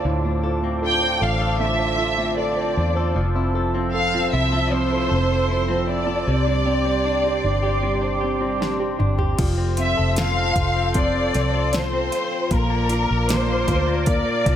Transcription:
Already playing: upright piano A3 F4 A4 C5, clean electric guitar C4 D4 A4, analog synth pad F4 C5 A5 D6
0.05 fingered electric bass D2, upright piano A2, clean electric guitar D3
0.25 upright piano A3, clean electric guitar D4
0.43 upright piano F4, clean electric guitar A4
0.62 upright piano A3, clean electric guitar C4
0.82 clean electric guitar D4, upright piano A4, violin section G5
1.01 clean electric guitar C4, upright piano C5
1.20 fingered electric bass A1, clean electric guitar D4, upright piano A4, violin section F5
1.39 clean electric guitar A4, upright piano C5
1.59 clean electric guitar D3, upright piano A3, violin section E5
1.79 clean electric guitar D4, upright piano C5
1.98 upright piano F4, clean electric guitar A4
2.18 upright piano A3, clean electric guitar C4
2.37 clean electric guitar D4, upright piano A4, violin section D5
2.57 clean electric guitar C4, upright piano C5
2.76 fingered electric bass E2, clean electric guitar D4, upright piano A4
2.95 clean electric guitar A4, upright piano C5
3.15 fingered electric bass F1, upright piano F3, clean electric guitar F3, analog synth pad F3 E6
3.35 upright piano C4, clean electric guitar E4
3.54 upright piano A4, clean electric guitar A4
3.75 clean electric guitar C4, upright piano C4
3.94 upright piano A4, violin section F5
4.14 upright piano F3, clean electric guitar C4
4.33 fingered electric bass C2, upright piano C4, clean electric guitar E4, violin section E5
4.52 upright piano F3, clean electric guitar A4
4.72 clean electric guitar F3, upright piano C4, violin section C5
4.91 clean electric guitar E4, upright piano A4
5.09 fingered electric bass F1, upright piano C4, clean electric guitar A4
5.29 clean electric guitar C4, upright piano A4
5.49 upright piano C4, clean electric guitar E4
5.68 upright piano F3, clean electric guitar C4
5.88 upright piano C4, clean electric guitar E4, violin section D5
6.07 upright piano F3, clean electric guitar A4
6.27 fingered electric bass C2, clean electric guitar C3, upright piano C3, analog synth pad G4 D5 C6 D6
6.46 upright piano G3, clean electric guitar D4
6.66 upright piano C4, clean electric guitar G4
6.85 upright piano G3, clean electric guitar C4
7.05 clean electric guitar D4, upright piano D4
7.24 clean electric guitar C4, upright piano G4
7.44 fingered electric bass G1, clean electric guitar D4, upright piano D4
7.63 clean electric guitar G4, upright piano G4
7.83 clean electric guitar C3, upright piano G3
8.01 clean electric guitar D4, upright piano C5
8.21 upright piano C4, clean electric guitar G4
8.41 upright piano G3, clean electric guitar C4
8.60 upright piano D4, clean electric guitar D4, snare
8.80 clean electric guitar C4, upright piano G4
8.98 fingered electric bass G1, upright piano D4, clean electric guitar D4, mid tom
9.19 upright piano G4, clean electric guitar G4, floor tom
9.38 fingered electric bass F1, clean electric guitar F3, upright piano F3, analog synth pad F4 A4 C5 C6, kick, closed hi-hat, crash
9.57 clean electric guitar C4
9.77 upright piano C4, clean electric guitar F4, violin section E5, closed hi-hat
9.97 fingered electric bass F1, clean electric guitar A4
10.16 clean electric guitar F4, upright piano A4, violin section F5, snare, closed hi-hat
10.37 clean electric guitar C4
10.56 fingered electric bass F1, upright piano F4, clean electric guitar F4, kick, closed hi-hat
10.76 clean electric guitar C4
10.94 clean electric guitar F3, upright piano C4, violin section D5, kick, closed hi-hat
11.15 clean electric guitar C4
11.34 fingered electric bass C2, clean electric guitar F4, upright piano A4, snare, closed hi-hat
11.54 clean electric guitar A4
11.73 upright piano F4, clean electric guitar F4, violin section C5, snare, closed hi-hat
11.93 clean electric guitar C4
12.12 clean electric guitar F4, closed hi-hat
12.31 clean electric guitar C4
12.51 fingered electric bass A#1, clean electric guitar A#2, upright piano A#3, analog synth pad A#4 D5 D6, violin section A#4, kick, closed hi-hat
12.70 clean electric guitar A#3
12.89 clean electric guitar D4, upright piano F4, closed hi-hat
13.09 fingered electric bass A#1, clean electric guitar A#4
13.28 upright piano A#3, clean electric guitar D4, violin section C5, snare, closed hi-hat
13.47 clean electric guitar A#3
13.66 fingered electric bass D2, clean electric guitar D4, upright piano F4, kick, closed hi-hat
13.86 clean electric guitar A#3
14.06 clean electric guitar A#2, upright piano A#3, violin section D5, kick, closed hi-hat
14.25 clean electric guitar A#3
14.44 fingered electric bass C2, clean electric guitar D4, upright piano F4, kick, snare, closed hi-hat

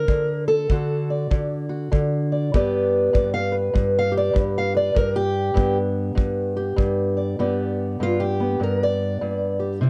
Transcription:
Already playing: steel-string acoustic guitar A#4
0.08 steel-string acoustic guitar D3, kick
0.48 steel-string acoustic guitar A4
0.70 steel-string acoustic guitar D3 F#4, kick
1.10 steel-string acoustic guitar D5
1.31 steel-string acoustic guitar D3, kick
1.69 steel-string acoustic guitar F#4
1.92 steel-string acoustic guitar D3, kick
2.32 steel-string acoustic guitar D5
2.54 steel-string acoustic guitar G2 B3 G4 B4 D5, kick
3.13 steel-string acoustic guitar G2 D5, kick
3.34 steel-string acoustic guitar F5
3.52 steel-string acoustic guitar B4
3.74 steel-string acoustic guitar G2, kick
3.99 steel-string acoustic guitar F5
4.12 steel-string acoustic guitar G4
4.17 steel-string acoustic guitar D5
4.33 steel-string acoustic guitar G2, kick
4.58 steel-string acoustic guitar F5
4.74 steel-string acoustic guitar B4 D5
4.95 steel-string acoustic guitar G2 A#4, kick
5.16 steel-string acoustic guitar G4
5.54 steel-string acoustic guitar G2 B3, kick
6.15 steel-string acoustic guitar G2, kick
6.57 steel-string acoustic guitar G4
6.76 steel-string acoustic guitar G2, kick
7.17 steel-string acoustic guitar D5
7.39 steel-string acoustic guitar G2 B3 G4 D5
8.00 steel-string acoustic guitar G2 F4
8.20 steel-string acoustic guitar G4
8.40 steel-string acoustic guitar B3
8.60 steel-string acoustic guitar G2 A#4
8.83 steel-string acoustic guitar D5
9.21 steel-string acoustic guitar G2
9.60 steel-string acoustic guitar G4
9.81 steel-string acoustic guitar C3 E4

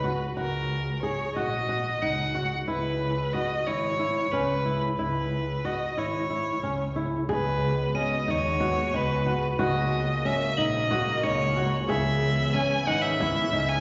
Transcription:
Already playing: double bass C#2, violin B4
0.04 nylon-string guitar F#4
0.36 double bass C#2, nylon-string guitar F#4, violin A#4
1.03 nylon-string guitar G#4, violin C#5
1.35 double bass A#1, nylon-string guitar F#4, violin D#5
1.69 nylon-string guitar F#4
2.02 double bass C#2, nylon-string guitar D#4, violin F#5
2.35 nylon-string guitar F#4
2.67 double bass C#2, nylon-string guitar E4, violin B4
3.33 nylon-string guitar F#4, violin D#5
3.67 double bass G#1, nylon-string guitar E4, violin C#5
4.00 nylon-string guitar E4
4.32 double bass C#2, nylon-string guitar C#4, violin B4
4.65 nylon-string guitar E4
4.98 double bass C#2, nylon-string guitar E4, violin B4
5.65 nylon-string guitar F#4, violin D#5
5.97 double bass G#1, nylon-string guitar E4, violin C#5
6.30 nylon-string guitar E4
6.63 double bass C#2, nylon-string guitar C#4
6.96 nylon-string guitar E4
7.28 double bass C#2, analog synth pad G#3 B3 F#4, nylon-string guitar G#4, violin B4, frame drum
7.95 nylon-string guitar C#4, violin D#5, crotales D#7
8.28 double bass D#2, nylon-string guitar D#4, violin C#5
8.60 nylon-string guitar F#4, frame drum
8.93 double bass C#2, nylon-string guitar D#4, violin B4
9.26 nylon-string guitar F#4
9.59 double bass C#2, analog synth pad C#3 A#3, nylon-string guitar F#4, violin D#5, frame drum
10.25 nylon-string guitar C#4, violin E5, frame drum
10.57 double bass A#1, nylon-string guitar D#4, violin D#5, crotales F#7
10.91 nylon-string guitar F#4, frame drum
11.22 double bass C#2, nylon-string guitar D#4, violin C#5
11.56 nylon-string guitar F#4
11.88 double bass C#2, analog synth pad E3 B3 C#4, nylon-string guitar G#4, violin E5, frame drum
12.54 nylon-string guitar C#4, violin G#5, frame drum
12.87 double bass G#1, nylon-string guitar D#4, violin F#5
13.02 violin E5
13.20 nylon-string guitar E4, frame drum
13.52 double bass C#2, nylon-string guitar D#4
13.69 violin G#5

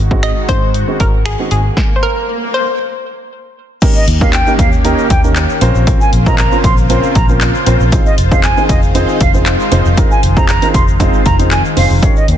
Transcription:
Already playing: fingered electric bass G#1, analog synth pad D#3 G#3 F#4, swell
0.11 grand piano G#3 C4 D#4 F#4, kick
0.23 synth pluck D#5, finger snap, closed hi-hat
0.49 fingered electric bass G#2, grand piano G#3 C4 D#4 G#4, synth pluck C5, kick, closed hi-hat
0.74 closed hi-hat
0.88 grand piano G#3 C4 D#4 F#4
1.00 fingered electric bass G#1, synth pluck A#4, kick, closed hi-hat
1.26 synth pluck G#4, finger snap, closed hi-hat
1.39 grand piano G#3 C4 D#4 F#4
1.51 fingered electric bass G#1, synth pluck G#4, closed hi-hat
1.77 kick, snare
1.96 synth pluck C5
2.03 synth pluck A#4
2.54 synth pluck C5
3.82 analog synth pad D#3 A#3 C#4 G4, grand piano A#3 C#4 D#4 G4 A#4, kick, closed hi-hat, crash, shaker
3.96 flute D#5, shaker
4.08 fingered electric bass D#2, closed hi-hat
4.21 grand piano A#3 C#4 D#4 G4 A#4, flute F5, kick, shaker
4.33 flute G5, clap, closed hi-hat, shaker
4.47 grand piano A#3 C#4 D#4 G4 A#4, shaker
4.59 fingered electric bass D#2, flute F5, kick, closed hi-hat, shaker
4.72 shaker
4.84 grand piano A#3 C#4 D#4 G4 A#4, closed hi-hat, shaker
4.98 shaker
5.10 fingered electric bass D#2, flute G5, kick, closed hi-hat, shaker
5.24 grand piano A#3 C#4 D#4 G4 A#4, shaker
5.36 clap, closed hi-hat, shaker
5.50 shaker
5.61 fingered electric bass A#1, analog synth pad C#3 A#3 F4 C5, grand piano C4 C#4 F4 A#4 C5, closed hi-hat, shaker
5.75 fingered electric bass A#1, shaker
5.87 kick, closed hi-hat, shaker
6.01 flute G#5, shaker
6.13 fingered electric bass A#1, closed hi-hat
6.26 grand piano C4 C#4 F4 A#4 D#5, flute A#5, kick, shaker
6.38 flute A#5, clap, closed hi-hat, shaker
6.52 grand piano C4 C#4 F4 A#4 C5, shaker
6.64 fingered electric bass A#1, flute C6, kick, closed hi-hat, shaker
6.77 shaker
6.90 grand piano C4 C#4 F4 A#4 C5, closed hi-hat, shaker
7.03 shaker
7.15 fingered electric bass A#1, flute A#5, kick, closed hi-hat, shaker
7.29 grand piano C4 C#4 F4 A#4 C5, shaker
7.41 clap, closed hi-hat, shaker
7.55 shaker
7.66 fingered electric bass A#1, grand piano C4 C#4 F4 A#4 C5, closed hi-hat, shaker
7.80 fingered electric bass A#1, shaker
7.92 analog synth pad D#3 G#3, grand piano C4 D#4 F4 G#4 C5, kick, closed hi-hat, shaker
8.06 flute D#5, shaker
8.18 fingered electric bass F1, closed hi-hat
8.31 grand piano C4 D#4 F4 G#4 C5, flute F5, kick, shaker
8.44 flute G#5, clap, closed hi-hat, shaker
8.57 grand piano C4 D#4 F4 G#4 C5, shaker
8.69 fingered electric bass F1, flute D#5, kick, closed hi-hat, shaker
8.83 shaker
8.95 grand piano C4 D#4 F4 G#4 C5, closed hi-hat, shaker
9.09 shaker
9.20 fingered electric bass F1, flute F5, kick, closed hi-hat, shaker
9.34 grand piano C4 D#4 F4 G#4 C5, shaker
9.46 clap, closed hi-hat, shaker
9.60 shaker
9.71 fingered electric bass F1, grand piano C4 D#4 F4 G#4 C5, closed hi-hat, shaker
9.85 fingered electric bass F1, shaker
9.97 grand piano C4 D#4 F4 G#4 A#4, kick, closed hi-hat, shaker
10.11 flute G#5, shaker
10.23 fingered electric bass F1, closed hi-hat
10.36 grand piano C4 D#4 F4 G#4 C5, flute A#5, kick, shaker
10.49 flute A#5, clap, closed hi-hat, shaker
10.62 grand piano C4 D#4 F4 G#4 A#4, closed hi-hat, shaker
10.74 fingered electric bass F1, flute C6, kick, closed hi-hat, shaker
10.88 shaker
11.00 grand piano C4 D#4 F4 G#4 C5, kick, closed hi-hat, shaker
11.14 shaker
11.26 fingered electric bass F1, flute A#5, kick, closed hi-hat, shaker
11.39 grand piano C4 D#4 F4 G#4 C5, closed hi-hat, shaker
11.51 flute G#5, clap, closed hi-hat, shaker
11.65 shaker
11.77 fingered electric bass F1, grand piano C4 D#4 F4 G#4 C5, flute F5, open hi-hat, shaker
11.90 fingered electric bass F1, shaker
12.02 analog synth pad A#3 C#4 G4, grand piano C#4 D#4 G4 A#4 C#5, kick, closed hi-hat, shaker
12.16 flute D#5, shaker
12.28 fingered electric bass D#2, closed hi-hat

